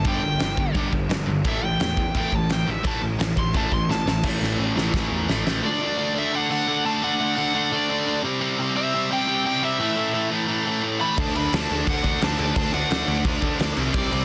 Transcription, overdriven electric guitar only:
0.09 G5
1.48 E5
1.65 G5
2.17 G5
2.35 A5
2.52 G5
2.70 E5
2.87 A5
3.39 C6
3.57 A5
3.74 C6
3.91 A5
4.09 A5
5.66 D5
6.18 E5
6.35 F#5
6.52 F#5
6.86 A5
7.04 F#5
7.36 F#5
7.72 D5
8.77 E5
9.13 G5
9.46 G5
9.64 E5
11.01 B5
11.19 A5
11.36 B5
11.55 A5
11.90 F#5
12.24 A5
12.57 A5
12.74 F#5
13.94 D5

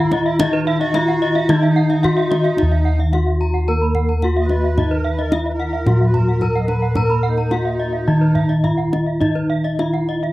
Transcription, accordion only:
0.01 E4
0.12 F#4
0.24 E4
0.38 F#4
0.63 E4 F#4
0.78 F#4
1.54 E4
1.68 D#4
4.40 D#5
4.45 B4
4.94 A#4
5.08 B4
5.20 A#4
5.30 D#5
5.42 B4
5.49 A#4 B4
5.65 A#4
6.05 B4
6.15 A#4
6.29 A#4
6.59 D#5
6.65 B4
7.03 A#4
7.28 D#4

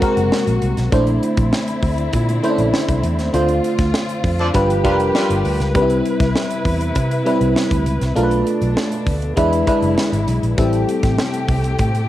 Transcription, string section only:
Already playing: C3 A#3 F#4
0.92 D3 A3 C4 E4
3.33 F4
4.54 F3 G4 B4
5.75 C3 E4
8.16 B2 A3 D4
9.36 D3 G#3 E4
10.58 C3 A3 G4

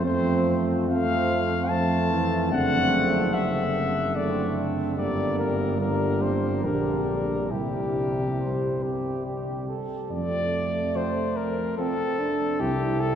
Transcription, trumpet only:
0.05 C5
0.89 F5
1.69 A5
2.52 F#5
3.34 E5
4.16 D5
4.98 D5
5.39 A#4
5.80 A#4
6.22 C5
6.64 A#4
7.51 G4
10.11 D5
10.96 C5
11.37 A#4
11.78 A4
12.60 G4
13.00 A4

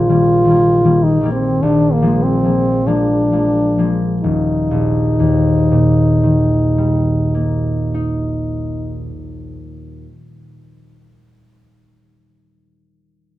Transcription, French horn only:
Already playing: F4
1.04 D#4
1.32 C4
1.63 D4
1.93 A#3
2.23 C4
2.87 D4
4.22 D#4

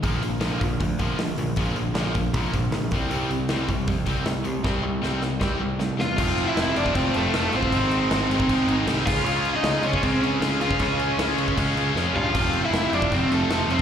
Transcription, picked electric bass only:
0.03 A#1
0.41 A#1
0.61 A#1
0.80 D2
0.99 A#1
1.19 A#1
1.38 A#1
1.56 A#1
1.76 A#1
1.94 A#1
2.33 A#1
2.53 A#1
2.71 A#1
2.91 C2
3.10 C2
3.49 C2
3.68 C2
3.87 F2
4.06 C2
4.26 C2
4.45 C2
4.64 C2
4.83 C2
5.03 C2
5.41 C2
5.61 C2
5.81 C2
6.00 E2
6.17 F1
6.57 F1
6.76 F1
6.95 F1
7.15 F1
7.34 F1
7.53 A1
7.72 G#1
8.11 G#1
8.30 G#1
8.49 G#1
8.68 G#1
8.87 C2
9.06 C#2
9.24 C#2
9.63 C#2
9.82 C#2
10.03 C#2
10.22 C#2
10.41 C#2
10.60 C#2
10.80 C#2
11.18 C#2
11.38 C#2
11.58 C#2
11.76 C#2
11.95 F2
12.14 G2
12.34 F1
12.71 F1
12.91 F1
13.11 F1
13.30 F1
13.49 F1
13.68 F1

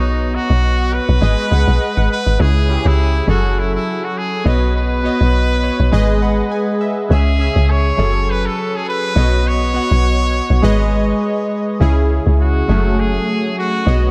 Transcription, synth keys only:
Already playing: B3 F#4 C#5 D#5
1.21 G#3 G#4 B4 D#5
1.50 G#3 G#4 B4 F#5
1.81 D#5
1.97 F#5
2.38 C#3 C#4 E4 G#4
2.68 C#3 C#4 E4 G4
2.77 G#4
3.27 F#3 C#4 G#4 A4
4.44 B3 F#4 C#5 D#5
5.03 B3 F#4 C#5 D#5
5.63 C#5
5.91 G#3 G#4 B4 D#5
6.22 F#5
6.51 G#5
6.81 E5
7.09 C#3 C#4 G#4 E5
7.38 C#3 C#4 G#4 E5
7.97 F#3 C#4 G#4 A4
9.15 B3 F#4 C#5 D#5
9.74 B3 F#4 C#5 F#5
10.62 G#3 G#4 B4 D#5
11.79 C#3 C#4 E4 G#4
12.68 F#3 A3 C#4 G#4
13.86 B3 F#4 C#5 D#5

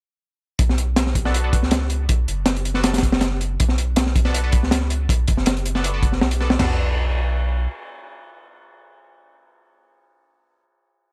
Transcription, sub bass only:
0.59 B1
1.63 C#2
2.09 B1
2.28 F#1
3.60 B1
4.62 C#2
5.09 B1
5.28 F#1
6.22 B1
6.59 B1

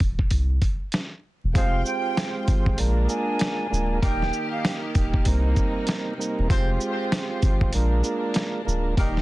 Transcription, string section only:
1.55 G#3 F4 G5
2.80 A#3 D4
4.01 D#3 A#3 G4
5.26 C3 D#4
6.49 G#3 F4 G4
7.72 A#3 D4
8.98 D#3 A#3 G4

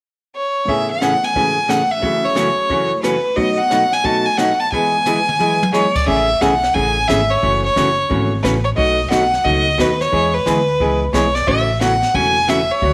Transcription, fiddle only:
0.36 C#5
0.69 E5
0.91 F#5
1.24 G#5
1.69 F#5
1.91 E5
2.25 C#5
3.03 B4
3.36 D#5
3.58 F#5
3.93 G#5
4.05 A5
4.26 G#5
4.37 F#5
4.60 A5
4.72 G#5
5.74 C#5
5.95 D5
6.08 E5
6.41 F#5
6.74 G#5
7.08 E5
7.30 C#5
7.65 C#5
8.43 B4
8.64 C#5
8.76 D#5
9.10 F#5
9.44 D#5
9.80 B4
10.01 C#5
10.34 B4
11.14 C#5
11.35 D5
11.48 E5
11.81 F#5
12.15 G#5
12.49 E5
12.71 C#5

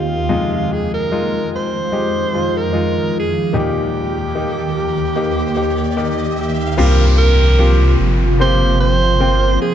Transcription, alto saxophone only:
Already playing: F4
0.73 G#4
0.94 A#4
1.56 C5
2.57 A#4
3.19 G#4
3.59 G4
6.41 G4
6.77 A#4
7.18 A#4
8.41 C5
8.81 C5
9.62 G#4

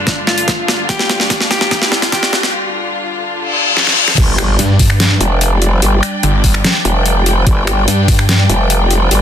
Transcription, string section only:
Already playing: G2 D3 D4 F4
4.18 G3 D4 D5 G5

